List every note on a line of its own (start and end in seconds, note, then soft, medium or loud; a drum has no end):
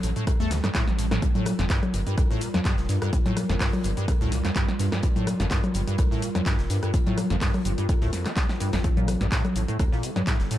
0.00 0.14 A1 loud
0.00 0.10 A2 medium
0.00 8.80 G3 medium
0.00 1.18 C4 medium
0.00 1.18 A4 medium
0.00 closed hi-hat medium
0.00 open hi-hat loud
0.00 shaker medium
0.16 0.25 A2 loud
0.16 closed hi-hat medium
0.16 shaker soft
0.27 0.31 A2 loud
0.27 kick loud
0.27 cross-stick medium
0.27 closed hi-hat medium
0.27 shaker soft
0.40 0.49 E2 loud
0.40 0.52 A3 loud
0.40 snare soft
0.40 shaker soft
0.51 0.61 D2 loud
0.51 0.58 C3 medium
0.51 snare loud
0.51 snare soft
0.51 closed hi-hat medium
0.51 open hi-hat loud
0.51 shaker medium
0.64 0.70 G2 loud
0.64 cross-stick soft
0.64 snare medium
0.64 clap soft
0.64 closed hi-hat soft
0.64 shaker soft
0.75 0.85 A2 loud
0.75 kick loud
0.75 snare loud
0.75 clap loud
0.75 closed hi-hat medium
0.75 shaker soft
0.88 1.19 A1 loud
0.88 snare medium
0.88 closed hi-hat soft
0.88 shaker soft
0.98 1.06 A2 medium
0.98 snare soft
0.98 closed hi-hat medium
0.98 open hi-hat loud
0.98 shaker medium
1.11 1.20 A2 loud
1.11 cross-stick medium
1.11 snare medium
1.11 closed hi-hat medium
1.11 shaker soft
1.22 1.27 G2 loud
1.22 8.80 F4 medium
1.22 8.80 A#4 medium
1.22 kick loud
1.22 closed hi-hat medium
1.22 shaker soft
1.35 1.48 A2 loud
1.35 closed hi-hat soft
1.35 low conga medium
1.35 shaker soft
1.46 1.53 A#2 medium
1.46 cross-stick medium
1.46 closed hi-hat medium
1.46 open hi-hat loud
1.46 low conga medium
1.46 shaker medium
1.59 1.68 G1 loud
1.59 1.65 F2 loud
1.59 snare medium
1.59 closed hi-hat medium
1.59 shaker soft
1.70 1.81 G2 loud
1.70 kick loud
1.70 snare loud
1.70 clap loud
1.70 closed hi-hat medium
1.70 shaker soft
1.83 cross-stick soft
1.83 closed hi-hat soft
1.83 low conga loud
1.83 shaker soft
1.94 2.04 G1 loud
1.94 2.01 G2 medium
1.94 closed hi-hat medium
1.94 open hi-hat loud
1.94 shaker medium
2.07 2.16 G2 loud
2.07 closed hi-hat medium
2.07 shaker soft
2.17 2.28 C2 medium
2.17 2.22 G2 loud
2.17 kick loud
2.17 cross-stick medium
2.17 closed hi-hat medium
2.17 shaker soft
2.30 2.43 A2 loud
2.30 snare soft
2.30 shaker soft
2.41 2.48 A#2 medium
2.41 closed hi-hat medium
2.41 open hi-hat loud
2.41 shaker medium
2.54 2.60 F2 loud
2.54 cross-stick soft
2.54 snare medium
2.54 closed hi-hat soft
2.54 low conga medium
2.54 shaker soft
2.65 2.76 G2 loud
2.65 kick loud
2.65 snare loud
2.65 clap loud
2.65 closed hi-hat medium
2.65 shaker soft
2.78 2.87 F1 medium
2.78 snare medium
2.78 closed hi-hat soft
2.78 shaker soft
2.89 2.96 G2 medium
2.89 2.99 G2 loud
2.89 snare soft
2.89 closed hi-hat medium
2.89 open hi-hat loud
2.89 shaker medium
3.02 3.11 G2 loud
3.02 cross-stick medium
3.02 closed hi-hat soft
3.02 shaker soft
3.13 3.17 G2 loud
3.13 kick loud
3.13 closed hi-hat medium
3.13 shaker medium
3.26 3.38 A2 loud
3.26 snare soft
3.26 closed hi-hat soft
3.26 low conga medium
3.26 shaker soft
3.37 3.44 A#2 medium
3.37 cross-stick medium
3.37 closed hi-hat medium
3.37 open hi-hat loud
3.37 low conga medium
3.37 shaker medium
3.49 3.58 G1 loud
3.49 3.56 F2 loud
3.49 snare medium
3.49 closed hi-hat medium
3.49 shaker soft
3.60 3.71 G2 loud
3.60 kick medium
3.60 snare loud
3.60 clap loud
3.60 closed hi-hat medium
3.60 open hi-hat medium
3.60 shaker soft
3.73 cross-stick soft
3.73 closed hi-hat soft
3.73 low conga medium
3.73 shaker soft
3.84 3.95 G1 loud
3.84 3.91 G2 medium
3.84 closed hi-hat medium
3.84 open hi-hat loud
3.84 shaker medium
3.97 4.06 G2 loud
3.97 closed hi-hat medium
3.97 shaker soft
4.08 4.12 G2 loud
4.08 kick loud
4.08 cross-stick medium
4.08 closed hi-hat medium
4.08 shaker soft
4.21 4.30 D2 loud
4.21 4.33 A2 loud
4.21 snare soft
4.21 shaker soft
4.32 4.42 C2 loud
4.32 4.39 A#2 medium
4.32 snare soft
4.32 closed hi-hat medium
4.32 open hi-hat loud
4.32 shaker medium
4.44 4.51 F2 loud
4.44 cross-stick soft
4.44 snare medium
4.44 clap soft
4.44 closed hi-hat soft
4.44 closed hi-hat medium
4.44 shaker soft
4.56 4.66 G2 loud
4.56 kick loud
4.56 clap loud
4.56 closed hi-hat medium
4.56 shaker soft
4.68 snare medium
4.68 closed hi-hat soft
4.68 shaker soft
4.79 4.90 G2 loud
4.79 4.87 G2 medium
4.79 snare medium
4.79 closed hi-hat medium
4.79 open hi-hat loud
4.79 shaker medium
4.92 5.01 G2 loud
4.92 cross-stick medium
4.92 snare medium
4.92 closed hi-hat medium
4.92 shaker soft
5.03 5.08 G2 loud
5.03 kick loud
5.03 closed hi-hat medium
5.03 shaker medium
5.16 5.29 A2 loud
5.16 closed hi-hat soft
5.16 low conga medium
5.16 shaker soft
5.27 5.34 A#2 medium
5.27 cross-stick medium
5.27 closed hi-hat medium
5.27 open hi-hat loud
5.27 low conga medium
5.27 shaker medium
5.40 5.49 G1 loud
5.40 5.46 F2 loud
5.40 snare medium
5.40 closed hi-hat medium
5.40 shaker soft
5.50 5.61 G2 loud
5.50 kick loud
5.50 snare loud
5.50 clap loud
5.50 closed hi-hat medium
5.50 shaker medium
5.64 cross-stick soft
5.64 closed hi-hat soft
5.64 low conga loud
5.64 shaker soft
5.74 5.85 G1 loud
5.74 5.82 G2 medium
5.74 closed hi-hat medium
5.74 open hi-hat loud
5.74 shaker medium
5.87 5.97 G2 loud
5.87 closed hi-hat medium
5.87 shaker soft
5.98 6.09 C2 medium
5.98 6.03 G2 loud
5.98 kick loud
5.98 cross-stick medium
5.98 closed hi-hat loud
5.98 closed hi-hat medium
5.98 shaker soft
6.11 6.24 A2 loud
6.11 snare soft
6.11 shaker soft
6.22 6.29 A#2 medium
6.22 closed hi-hat medium
6.22 open hi-hat loud
6.22 shaker medium
6.35 6.41 F2 loud
6.35 cross-stick soft
6.35 snare medium
6.35 closed hi-hat medium
6.35 low conga medium
6.35 shaker soft
6.46 6.57 G2 loud
6.46 kick loud
6.46 snare loud
6.46 clap loud
6.46 closed hi-hat medium
6.46 shaker soft
6.59 6.68 F1 medium
6.59 snare medium
6.59 closed hi-hat soft
6.59 shaker soft
6.70 6.80 G2 loud
6.70 6.77 G2 medium
6.70 snare soft
6.70 closed hi-hat medium
6.70 open hi-hat loud
6.70 shaker medium
6.83 6.92 G2 loud
6.83 cross-stick medium
6.83 closed hi-hat medium
6.83 shaker soft
6.94 6.98 G2 loud
6.94 kick loud
6.94 closed hi-hat medium
6.94 shaker medium
7.07 7.19 A2 loud
7.07 snare soft
7.07 closed hi-hat soft
7.07 low conga medium
7.07 shaker soft
7.18 7.25 A#2 medium
7.18 cross-stick medium
7.18 closed hi-hat medium
7.18 open hi-hat loud
7.18 low conga loud
7.18 shaker medium
7.30 7.39 G1 loud
7.30 7.36 F2 loud
7.30 snare medium
7.30 closed hi-hat medium
7.30 shaker soft
7.41 7.52 G2 loud
7.41 kick loud
7.41 snare loud
7.41 clap loud
7.41 closed hi-hat medium
7.41 open hi-hat medium
7.41 shaker soft
7.54 cross-stick soft
7.54 closed hi-hat soft
7.54 low conga medium
7.54 shaker soft
7.65 7.75 G1 loud
7.65 7.72 G2 medium
7.65 closed hi-hat medium
7.65 open hi-hat loud
7.65 shaker medium
7.78 7.87 G2 loud
7.78 closed hi-hat medium
7.78 shaker soft
7.89 7.93 G2 loud
7.89 kick loud
7.89 cross-stick medium
7.89 closed hi-hat medium
7.89 shaker soft
8.01 8.11 D2 loud
8.01 8.11 A2 loud
8.01 snare soft
8.01 closed hi-hat soft
8.01 shaker soft
8.13 8.27 F2 medium
8.13 snare soft
8.13 closed hi-hat medium
8.13 open hi-hat loud
8.13 shaker medium
8.26 8.32 A#3 medium
8.26 cross-stick soft
8.26 snare medium
8.26 clap soft
8.26 closed hi-hat soft
8.26 closed hi-hat medium
8.26 shaker soft
8.36 8.47 G3 medium
8.36 kick loud
8.36 snare loud
8.36 clap loud
8.36 closed hi-hat medium
8.36 shaker soft
8.49 snare soft
8.49 snare medium
8.49 closed hi-hat soft
8.49 shaker soft
8.60 8.71 G2 loud
8.60 snare soft
8.60 closed hi-hat medium
8.60 open hi-hat loud
8.60 shaker medium
8.73 9.17 A1 medium
8.73 8.79 F2 loud
8.73 cross-stick medium
8.73 snare medium
8.73 snare loud
8.73 closed hi-hat medium
8.73 shaker soft
8.84 8.88 A2 loud
8.84 10.58 G3 medium
8.84 10.58 C4 medium
8.84 10.58 A4 medium
8.84 kick loud
8.84 closed hi-hat medium
8.84 shaker soft
8.97 9.10 A#2 loud
8.97 closed hi-hat soft
8.97 low conga medium
8.97 shaker soft
9.08 9.15 C3 medium
9.08 cross-stick medium
9.08 closed hi-hat medium
9.08 open hi-hat loud
9.08 low conga loud
9.08 shaker medium
9.21 9.30 A1 loud
9.21 9.27 G2 loud
9.21 snare medium
9.21 closed hi-hat medium
9.21 shaker soft
9.32 9.42 A2 loud
9.32 kick loud
9.32 snare loud
9.32 clap loud
9.32 closed hi-hat medium
9.32 shaker soft
9.45 cross-stick soft
9.45 closed hi-hat soft
9.45 low conga medium
9.45 shaker soft
9.56 9.66 A1 loud
9.56 9.63 A2 medium
9.56 closed hi-hat medium
9.56 open hi-hat loud
9.56 shaker medium
9.68 9.78 A2 loud
9.68 closed hi-hat medium
9.68 shaker soft
9.79 9.90 D2 medium
9.79 kick loud
9.79 cross-stick medium
9.79 closed hi-hat medium
9.79 shaker soft
9.92 10.05 A#2 loud
9.92 snare soft
9.92 shaker soft
10.03 10.10 C3 medium
10.03 closed hi-hat medium
10.03 open hi-hat loud
10.03 shaker medium
10.16 10.22 G2 loud
10.16 cross-stick soft
10.16 snare medium
10.16 closed hi-hat medium
10.16 low conga medium
10.16 shaker soft
10.27 10.38 A2 loud
10.27 kick loud
10.27 snare loud
10.27 clap loud
10.27 closed hi-hat medium
10.27 shaker soft
10.40 10.49 G1 medium
10.40 snare medium
10.40 closed hi-hat soft
10.40 shaker soft
10.51 10.58 A2 loud
10.51 10.58 A2 medium
10.51 snare soft
10.51 closed hi-hat medium
10.51 open hi-hat loud
10.51 shaker medium